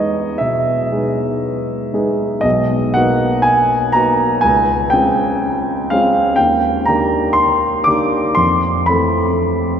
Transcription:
0.00 2.47 E2 soft
0.00 0.92 G#3 soft
0.00 0.93 B3 soft
0.00 0.92 D#4 soft
0.00 0.93 G#4 soft
0.00 2.47 C#5 medium
0.00 2.41 D#5 medium
0.38 0.91 B2 soft
0.38 1.92 E5 medium
0.92 1.90 G#3 soft
0.92 1.90 B3 soft
0.92 1.90 D#4 soft
0.92 1.90 G#4 soft
1.93 2.40 G#3 soft
1.93 2.40 B3 soft
1.93 2.40 D#4 soft
1.93 2.41 G#4 soft
2.41 2.92 B1 soft
2.41 2.93 D#5 medium
2.94 3.90 A#3 soft
2.94 3.91 B3 soft
2.94 3.91 D#4 soft
2.94 3.91 F#4 soft
2.94 3.44 F#5 medium
3.42 3.93 G#5 medium
3.92 4.41 A#3 soft
3.92 4.40 B3 soft
3.92 4.41 D#4 soft
3.92 4.41 F#4 soft
3.92 4.44 A#5 medium
4.41 4.92 C#2 soft
4.41 4.92 G#5 medium
4.90 5.87 G#3 soft
4.90 5.86 C4 soft
4.90 5.87 C#4 soft
4.90 5.87 F4 soft
4.90 5.89 G5 medium
5.90 6.35 G#3 soft
5.90 6.36 C4 soft
5.90 6.36 C#4 soft
5.90 6.36 F4 soft
5.90 6.39 F5 medium
6.36 6.86 D#2 soft
6.36 6.86 G5 medium
6.86 7.84 D#3 soft
6.86 7.84 A#3 soft
6.86 7.84 D4 soft
6.86 7.85 G4 soft
6.86 7.36 A#5 medium
7.33 7.86 C6 medium
7.84 8.34 D#3 soft
7.84 8.34 A#3 soft
7.84 8.34 D4 soft
7.84 8.34 G4 soft
7.84 8.37 D6 medium
8.35 8.87 F2 soft
8.35 8.88 C6 medium
8.86 9.80 E3 soft
8.86 9.80 A3 soft
8.86 9.80 C4 soft
8.86 9.80 A4 soft
8.86 9.80 B5 medium

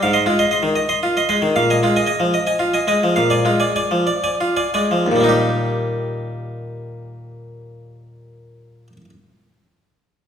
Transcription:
0.03 0.26 G#2 medium
0.03 0.15 F5 medium
0.13 0.22 D#5 medium
0.13 0.23 C6 medium
0.26 0.52 G#3 soft
0.26 0.39 F4 medium
0.39 0.48 D#5 medium
0.39 0.48 C6 medium
0.51 0.60 D#5 soft
0.51 0.61 C6 medium
0.63 0.76 D#3 soft
0.76 0.88 D#5 medium
0.89 0.98 D#5 medium
0.89 0.98 C6 medium
1.03 1.16 F4 medium
1.17 1.25 D#5 medium
1.17 1.26 C6 medium
1.29 1.54 G#3 soft
1.29 1.38 D#5 soft
1.29 1.38 C6 medium
1.42 1.54 D#3 medium
1.56 1.80 A#2 medium
1.56 1.68 F5 medium
1.70 1.78 D#5 soft
1.70 1.79 G#5 medium
1.83 2.09 G#3 soft
1.83 1.95 F4 medium
1.96 2.05 D#5 soft
1.96 2.05 G#5 medium
2.06 2.16 D#5 medium
2.06 2.17 G#5 medium
2.20 2.34 F3 medium
2.34 2.45 D#5 medium
2.47 2.57 D#5 soft
2.47 2.57 G#5 medium
2.59 2.74 F4 medium
2.74 2.84 D#5 soft
2.74 2.84 G#5 medium
2.88 3.16 G#3 soft
2.88 2.98 D#5 soft
2.88 2.98 G#5 medium
3.03 3.17 F3 medium
3.16 3.45 A#2 medium
3.16 3.32 F5 medium
3.30 3.41 D5 soft
3.30 3.42 G#5 medium
3.45 3.77 G#3 soft
3.45 3.61 F4 soft
3.60 3.71 D5 soft
3.60 3.71 G#5 soft
3.76 3.87 D5 soft
3.76 3.87 G#5 medium
3.91 4.07 F3 soft
4.07 4.22 D5 medium
4.24 4.35 D5 soft
4.24 4.35 G#5 medium
4.41 4.57 F4 soft
4.57 4.68 D5 soft
4.57 4.69 G#5 soft
4.74 5.07 G#3 soft
4.74 4.86 D5 soft
4.74 4.86 G#5 soft
4.91 5.07 F3 soft
5.06 8.87 D#2 medium
5.12 8.92 A#2 soft
5.16 8.97 G3 soft
5.20 9.01 A#3 soft
5.20 9.05 D#4 soft
5.29 9.10 G4 soft

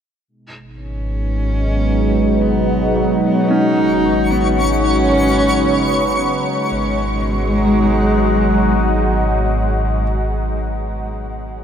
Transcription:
0.28 3.44 G#1 medium
0.28 3.49 B2 medium
0.28 6.69 G#3 medium
0.28 6.69 D#4 medium
0.63 3.50 G#3 medium
0.80 2.43 C#4 medium
0.98 6.70 F#3 medium
1.71 6.70 D#4 medium
1.71 6.70 F#4 medium
2.42 3.22 B3 medium
2.96 4.24 F#3 soft
3.24 3.50 B3 medium
3.49 6.67 G#1 medium
3.49 6.71 C#3 medium
3.49 6.10 C#4 medium
3.49 4.32 D#4 loud
3.53 6.75 C#5 medium
3.53 6.75 C#6 medium
3.83 6.71 B3 medium
4.04 6.63 D#3 medium
4.31 4.59 B3 medium
4.57 6.18 C#4 medium
5.11 7.71 A#4 medium
6.70 10.03 G#1 medium
6.70 10.05 B2 medium
6.70 10.02 G#3 medium
6.70 10.03 G#3 medium
6.70 10.03 D#4 medium
6.70 10.03 B4 soft
6.87 10.19 F#3 medium
7.04 10.36 G#3 medium
7.20 10.53 D#4 medium
7.34 10.66 F#4 medium

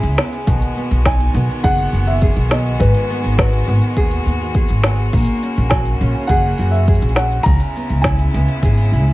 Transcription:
0.00 0.14 C#2 medium
0.00 0.43 C#3 medium
0.00 0.48 C#3 medium
0.00 9.13 G#3 medium
0.00 0.18 B3 medium
0.00 5.09 B3 medium
0.00 0.45 E4 medium
0.00 0.54 E4 medium
0.00 1.64 G#4 medium
0.00 open hi-hat soft
0.18 0.77 B3 medium
0.18 snare medium
0.18 shaker medium
0.33 open hi-hat soft
0.33 shaker soft
0.47 0.58 B1 loud
0.47 2.80 B2 medium
0.47 5.10 D#3 medium
0.47 7.43 F#4 medium
0.47 kick loud
0.47 open hi-hat medium
0.47 shaker soft
0.62 open hi-hat soft
0.77 1.35 B3 medium
0.77 shaker medium
0.91 1.29 B1 medium
0.91 open hi-hat soft
0.91 shaker soft
1.05 3.39 D#4 medium
1.05 1.66 G#5 loud
1.05 kick loud
1.05 snare medium
1.05 open hi-hat medium
1.05 shaker soft
1.20 open hi-hat soft
1.34 1.45 B1 loud
1.34 2.51 B3 medium
1.34 shaker medium
1.50 shaker soft
1.64 1.85 F#1 medium
1.64 2.22 G#4 medium
1.64 2.09 F#5 loud
1.64 kick loud
1.64 open hi-hat medium
1.64 shaker soft
1.78 open hi-hat soft
1.93 2.30 F#1 medium
1.93 shaker medium
2.07 2.53 E5 loud
2.07 shaker soft
2.22 3.42 G#4 medium
2.22 kick loud
2.22 open hi-hat medium
2.22 shaker soft
2.36 2.74 B1 medium
2.36 open hi-hat soft
2.51 3.10 B3 medium
2.51 2.81 D#5 medium
2.51 snare medium
2.51 shaker medium
2.66 shaker soft
2.80 2.91 G#1 medium
2.80 5.14 G#2 medium
2.80 3.37 B4 loud
2.80 kick loud
2.80 open hi-hat medium
2.80 shaker soft
2.94 open hi-hat soft
3.10 3.67 B3 medium
3.10 shaker medium
3.24 3.61 G#1 medium
3.24 open hi-hat soft
3.24 shaker soft
3.38 4.26 F#4 medium
3.38 4.80 B4 medium
3.38 kick loud
3.38 snare medium
3.38 open hi-hat medium
3.38 shaker soft
3.53 open hi-hat soft
3.68 3.78 G#1 medium
3.68 4.84 B3 medium
3.68 shaker medium
3.83 shaker soft
3.97 4.18 D#2 medium
3.97 4.55 G#4 medium
3.97 kick medium
3.97 open hi-hat medium
3.97 shaker soft
4.11 open hi-hat soft
4.26 4.63 D#2 medium
4.26 5.71 F#4 medium
4.26 shaker medium
4.41 shaker soft
4.54 5.75 G#4 medium
4.54 kick loud
4.54 open hi-hat medium
4.54 shaker soft
4.69 5.07 G#1 medium
4.69 open hi-hat soft
4.83 5.20 B3 medium
4.83 snare medium
4.83 shaker medium
4.99 shaker soft
5.12 5.24 A#1 loud
5.12 7.44 C#3 medium
5.12 7.43 A#3 medium
5.12 7.47 A#3 medium
5.12 kick loud
5.12 open hi-hat soft
5.12 shaker soft
5.14 open hi-hat soft
5.18 open hi-hat soft
5.20 open hi-hat soft
5.22 open hi-hat medium
5.25 open hi-hat medium
5.27 open hi-hat soft
5.42 6.01 C#4 medium
5.42 shaker medium
5.56 5.95 A#1 medium
5.56 open hi-hat soft
5.56 shaker soft
5.70 6.59 F#4 medium
5.70 6.31 G#5 medium
5.70 kick loud
5.70 snare medium
5.70 open hi-hat medium
5.70 shaker soft
5.85 open hi-hat soft
6.01 6.12 A#1 loud
6.01 7.17 C#4 medium
6.01 shaker medium
6.15 shaker soft
6.27 6.51 F#1 medium
6.27 6.88 G#4 medium
6.27 6.74 F#5 loud
6.27 kick loud
6.27 open hi-hat medium
6.27 shaker soft
6.58 6.96 F#2 medium
6.58 7.53 F#4 medium
6.58 open hi-hat soft
6.58 shaker medium
6.71 7.13 E5 medium
6.71 shaker soft
6.88 8.64 G#4 medium
6.88 kick loud
6.88 open hi-hat medium
6.88 shaker soft
6.95 open hi-hat soft
7.02 7.40 A#1 medium
7.02 open hi-hat soft
7.09 open hi-hat soft
7.15 7.76 C#4 medium
7.15 7.46 F#5 medium
7.15 snare medium
7.15 shaker medium
7.31 shaker soft
7.43 7.57 C#2 loud
7.43 9.13 C#3 medium
7.43 9.13 B3 medium
7.43 9.13 E4 medium
7.43 8.05 A#5 loud
7.43 kick loud
7.43 open hi-hat medium
7.43 shaker soft
7.60 open hi-hat soft
7.76 8.35 B3 medium
7.76 shaker medium
7.90 8.28 C#2 medium
7.90 open hi-hat soft
7.90 shaker soft
8.02 9.13 G#5 medium
8.02 kick loud
8.02 snare medium
8.02 open hi-hat medium
8.02 shaker soft
8.06 8.92 E4 medium
8.19 open hi-hat soft
8.34 8.45 C#2 loud
8.34 9.13 B3 medium
8.34 shaker medium
8.49 open hi-hat soft
8.62 8.93 G#1 medium
8.62 9.13 G#4 medium
8.62 kick loud
8.62 open hi-hat medium
8.62 shaker soft
8.78 open hi-hat soft
8.92 9.13 C#2 medium
8.92 9.13 E4 medium
8.92 shaker medium
9.07 shaker soft

